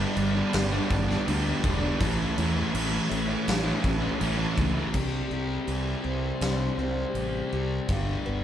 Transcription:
Already playing: distorted electric guitar G2 D3 G3 B3 D4, tonewheel organ G4 B4 D5 A5
0.00 distorted electric guitar G3 B3
0.17 fingered electric bass G1, distorted electric guitar D3 G3 B3 D4, muted distorted electric guitar stroke, crash
0.35 distorted electric guitar G3 B3 D4, muted distorted electric guitar stroke
0.53 fingered electric bass G1, snare, crash
0.71 distorted electric guitar G3 B3 D4
0.90 fingered electric bass G1, muted distorted electric guitar stroke, kick, crash
1.08 distorted electric guitar G3 B3 D4, snare
1.26 fingered electric bass D2, distorted electric guitar G2 D3 G3 B3 D4, crash
1.44 distorted electric guitar G3 B3 D4
1.63 fingered electric bass E1, distorted electric guitar D3 G3 B3 D4, kick, crash
1.81 distorted electric guitar G3 B3 D4
1.98 fingered electric bass A1, distorted electric guitar A2 E3 A3 C#4 E4, tonewheel organ E4 C#5 A5, kick, crash
2.37 fingered electric bass E2, distorted electric guitar E3 A3 C#4 E4, crash
2.56 distorted electric guitar A3 C#4 E4
2.73 fingered electric bass A1, distorted electric guitar A2 E3 A3 C#4 E4, crash
2.91 distorted electric guitar A3 C#4 E4
3.10 fingered electric bass A1, distorted electric guitar E3 A3 C#4 E4, muted distorted electric guitar stroke, crash
3.27 distorted electric guitar A3 C#4 E4, muted distorted electric guitar stroke
3.48 fingered electric bass A1, snare, crash
3.64 distorted electric guitar A3 C#4 E4
3.83 fingered electric bass A1, muted distorted electric guitar stroke, kick, crash
4.01 distorted electric guitar A3 C#4 E4
4.19 fingered electric bass A1, distorted electric guitar A2 E3 A3 C#4 E4, crash
4.37 distorted electric guitar A3 C#4 E4
4.56 fingered electric bass C#2, distorted electric guitar E3 A3 C#4 E4, kick, crash
4.74 distorted electric guitar A3 C#4 E4
4.93 fingered electric bass C2, distorted electric guitar C3 G3 C4, steel-string acoustic guitar C3, kick, crash
5.31 fingered electric bass C2, steel-string acoustic guitar G3
5.67 fingered electric bass C2, steel-string acoustic guitar E3, crash
6.04 fingered electric bass C2, steel-string acoustic guitar C4
6.41 fingered electric bass C2, steel-string acoustic guitar G3, snare, crash
6.77 fingered electric bass C2, steel-string acoustic guitar C4
7.15 fingered electric bass A1, steel-string acoustic guitar G4, crash
7.53 fingered electric bass C2, steel-string acoustic guitar G3
7.88 fingered electric bass G1, distorted electric guitar G2 D3 G3, steel-string acoustic guitar G2, kick, crash
8.26 fingered electric bass G1, steel-string acoustic guitar B3

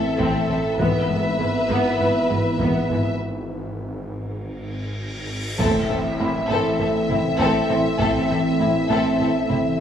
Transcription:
Already playing: detuned saw bass A1, ambient pad E3 C4 A4 E5, french horn section C4 E4, violin section A4 E5, felt piano E6
0.19 double bass section A1, cello section A2, synth pluck A3, viola section C4, taiko
0.48 double bass section A1, cello section A2, viola section C4, synth pluck A4
0.79 double bass section G#1, detuned saw bass G#1, cello section G#2, ambient pad E3 B3 B4 E5, synth pluck E3, viola section B3, french horn section B3 E4, violin section B4 E5, taiko
1.08 double bass section G#1, cello section G#2, synth pluck G#3, viola section B3
1.38 double bass section G#1, cello section G#2, viola section G#3, synth pluck B3
1.68 double bass section G#1, cello section G#2, synth pluck E3, viola section B3
1.99 double bass section G#1, cello section G#2, viola section B3, synth pluck E4
2.29 double bass section G#1, cello section G#2, viola section G#3, synth pluck E4
2.59 double bass section G#1, cello section G#2, synth pluck E3, viola section B3, taiko
2.89 double bass section G#1, cello section G#2, viola section B3, synth pluck E4
3.20 cymbal swell
5.59 detuned saw bass A1, double bass section A1, cello section A2, ambient pad E3 C4 A4 E5, synth pluck A3, viola section C4, french horn section C4 E4, violin section A4 E5, taiko, impact
5.89 double bass section A1, cello section A2, viola section C4, synth pluck C4, violin section A4
6.19 double bass section A1, cello section A2, viola section C4, synth pluck E4, violin section E4, felt piano B5
6.49 double bass section A1, cello section A2, synth pluck A3, viola section C4, violin section A4
6.80 double bass section A1, cello section A2, viola section C4, synth pluck A4, violin section A4
7.09 double bass section A1, cello section A2, viola section C4, violin section E4, synth pluck A4, taiko mid
7.39 double bass section A1, cello section A2, synth pluck A3, viola section C4, violin section A4, taiko
7.69 double bass section A1, cello section A2, viola section C4, synth pluck A4, violin section A4, felt piano C5 C6
7.99 double bass section A1, cello section A2, synth pluck A3, viola section C4, violin section A4, taiko
8.29 double bass section A1, cello section A2, viola section C4, synth pluck C4, violin section A4
8.59 double bass section A1, cello section A2, viola section C4, synth pluck E4, violin section E4
8.89 double bass section A1, cello section A2, synth pluck A3, viola section C4, violin section A4
9.19 double bass section A1, cello section A2, viola section C4, synth pluck A4, violin section A4
9.49 double bass section A1, cello section A2, viola section C4, violin section E4, synth pluck A4, taiko mid

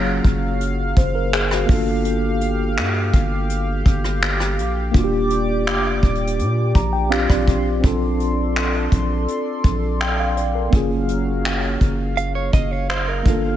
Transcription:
Already playing: 808-style bass F#1, analog synth pad F#3 F5, tine electric piano A#3 C#4 F4 G#4
0.24 808-style bass F#1, kick, closed hi-hat
0.61 closed hi-hat
0.96 808-style bass F#1, tine electric piano C5, kick, closed hi-hat
1.15 tine electric piano A#4
1.33 tine electric piano G#4, finger snap, closed hi-hat
1.51 tine electric piano F#4, cross-stick
1.66 808-style bass G1, tine electric piano A#3 D4, analog synth pad G4, kick, open hi-hat
1.70 tine electric piano F4 A4
2.05 closed hi-hat
2.41 closed hi-hat
2.77 808-style bass G2, finger snap, closed hi-hat
3.13 808-style bass G1, kick, closed hi-hat
3.49 closed hi-hat
3.85 808-style bass G1, kick, closed hi-hat
4.04 cross-stick
4.22 finger snap, closed hi-hat
4.40 cross-stick
4.59 808-style bass A#1, closed hi-hat
4.91 808-style bass D#1, tine electric piano A#3 D4, analog synth pad D5 D6, kick, closed hi-hat
4.95 tine electric piano F4 F#4
5.04 tine electric piano G4
5.30 closed hi-hat
5.67 808-style bass F1, finger snap, closed hi-hat
6.03 808-style bass D#1, kick, closed hi-hat
6.15 closed hi-hat
6.27 closed hi-hat
6.39 808-style bass A#2, closed hi-hat
6.75 808-style bass A#1, tine electric piano A#5, kick, closed hi-hat
6.93 tine electric piano G5
7.09 tine electric piano C4 D4 F4 G4 F5, analog synth pad D5 C6, finger snap, closed hi-hat
7.29 808-style bass A#1, tine electric piano D5, kick, cross-stick
7.48 808-style bass A#1, kick, closed hi-hat
7.80 808-style bass A#1, tine electric piano C4 D4, kick, closed hi-hat
7.84 tine electric piano F4 A4, analog synth pad A4 D5 C6
8.20 closed hi-hat
8.56 finger snap, closed hi-hat
8.92 808-style bass A#1, kick, closed hi-hat
9.28 closed hi-hat
9.64 808-style bass A#1, kick, closed hi-hat
10.00 tine electric piano G5, finger snap, closed hi-hat
10.19 tine electric piano F5
10.37 tine electric piano D5, closed hi-hat
10.55 tine electric piano A#4
10.70 808-style bass F#1, analog synth pad F#3 F5, tine electric piano A#3 C#4, kick, closed hi-hat
10.74 tine electric piano F4 G#4
11.08 closed hi-hat
11.45 finger snap, closed hi-hat
11.80 808-style bass F#1, kick, closed hi-hat
12.17 clean electric guitar F5, closed hi-hat
12.35 clean electric guitar C#5
12.53 808-style bass F#1, clean electric guitar D#5, kick, closed hi-hat
12.71 clean electric guitar C#5
12.89 clean electric guitar C5, finger snap, closed hi-hat
13.08 clean electric guitar A#4
13.23 808-style bass G1, tine electric piano A3 D4, analog synth pad G4, kick, closed hi-hat
13.28 tine electric piano A#3 F4 A4

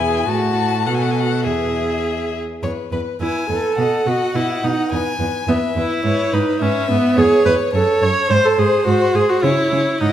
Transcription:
Already playing: cello E2, violin E4 G#5
0.01 viola G#4
0.29 cello A2, violin F#4 A5, viola F#4
0.85 cello B2, viola F#4, violin A4 F#5
0.94 violin G#5
1.02 violin F#5
1.11 violin G#5
1.20 violin F#5
1.45 cello E2, violin G#4 E5, viola G#4
2.63 cello E2, violin B4 C#5
2.92 cello E2, violin B4
3.21 cello E2, viola E4, violin B4 G#5
3.49 cello E2, viola A4, violin B4
3.78 cello B2, violin D#5 F#5
4.06 cello B2, viola F#4, violin D#5
4.35 cello B2, viola E4, violin D#5
4.63 cello B2, viola D#4, violin D#5
4.92 cello E2, violin B4 G#5
5.20 cello E2, violin B4
5.48 cello E2, viola B3, violin B4 E5
5.76 cello E2, viola E4, violin B4
6.04 cello G#2, violin B4 C#5
6.33 cello G#2, viola D#4, violin B4
6.60 cello G#2, viola C#4, violin B4 E5
6.89 cello G#2, viola B3, violin B4
7.17 cello E2, viola G#4, violin C#5
7.45 cello E2, viola B4, violin C#5
7.73 cello F#2, viola A4, violin C#5
8.02 cello F#2, violin C#5, viola C#5
8.30 cello G#2, violin C5, viola C5
8.45 viola A4
8.58 cello G#2, viola G#4, violin C5
8.87 cello G#2, viola F#4, violin C5
9.15 cello G#2, viola G#4, violin C5
9.30 viola F#4
9.43 cello C#3, viola E4, violin C#5
9.72 cello C#3, violin C#5
10.00 cello G#2, viola D#4, violin D#5 F#5
10.09 viola E4

